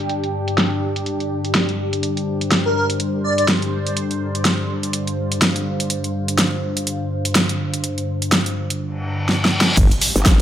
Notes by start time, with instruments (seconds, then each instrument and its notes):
Already playing: analog synth pad G2 D3 D4 G4, ambient pad D4 G4 G5
0.09 closed hi-hat
0.24 closed hi-hat
0.48 closed hi-hat
0.58 snare, closed hi-hat
0.96 closed hi-hat
1.06 closed hi-hat
1.20 closed hi-hat
1.45 closed hi-hat
1.55 snare, closed hi-hat
1.69 closed hi-hat
1.93 closed hi-hat
2.03 analog synth pad C5, closed hi-hat
2.17 closed hi-hat
2.41 closed hi-hat
2.51 snare, closed hi-hat
2.65 digital synth lead A#4
2.76 digital synth lead A#4
2.90 closed hi-hat
3.00 closed hi-hat
3.24 digital synth lead D5
3.38 digital synth lead D5, closed hi-hat
3.48 snare, closed hi-hat
3.62 closed hi-hat
3.87 closed hi-hat
3.97 closed hi-hat
4.11 closed hi-hat
4.26 ambient pad F5
4.35 closed hi-hat
4.45 snare, closed hi-hat
4.83 closed hi-hat
4.93 closed hi-hat
5.07 closed hi-hat
5.32 closed hi-hat
5.42 snare, closed hi-hat
5.56 closed hi-hat
5.80 closed hi-hat
5.90 closed hi-hat
6.04 closed hi-hat
6.28 closed hi-hat
6.38 snare, closed hi-hat
6.77 closed hi-hat
6.87 closed hi-hat
7.25 closed hi-hat
7.35 snare, closed hi-hat
7.49 closed hi-hat
7.74 closed hi-hat
7.84 closed hi-hat
7.98 closed hi-hat
8.22 closed hi-hat
8.32 snare, closed hi-hat
8.46 closed hi-hat
8.70 closed hi-hat
8.81 reverse cymbal
9.29 snare
9.45 snare
9.61 snare
9.77 wobble bass G1, analog synth pad D3 G3 D4, kick, closed hi-hat, crash, impact, shaker
9.91 closed hi-hat, shaker
10.01 open hi-hat, shaker
10.15 wobble bass G1, snare, closed hi-hat, shaker
10.26 kick, snare, closed hi-hat, shaker